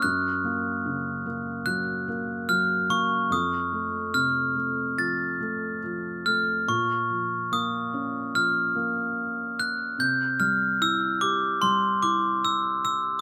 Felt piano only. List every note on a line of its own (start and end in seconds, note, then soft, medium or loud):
0.04 3.27 F#2 medium
0.44 1.25 A#3 soft
0.86 2.45 C#3 soft
1.26 2.07 A#3 soft
1.66 2.47 F#3 medium
2.08 2.88 A#3 soft
2.49 3.29 F#3 soft
2.89 3.30 A#3 medium
3.30 6.64 F2 medium
3.73 4.54 A3 soft
4.14 5.79 C3 medium
4.55 5.39 A3 soft
4.97 5.82 F3 soft
5.40 6.24 A3 soft
5.83 6.66 F3 soft
6.26 6.67 A3 soft
6.68 9.95 A#2 medium
7.10 8.33 F3 soft
7.52 8.74 A#3 soft
7.93 9.54 C#4 soft
8.34 9.95 F3 soft
8.75 9.95 A#3 soft
9.98 13.21 C3 medium
10.40 11.61 G3 soft
10.81 12.01 E4 soft
11.21 12.81 G4 medium
11.62 13.21 G3 soft
12.03 13.21 E4 soft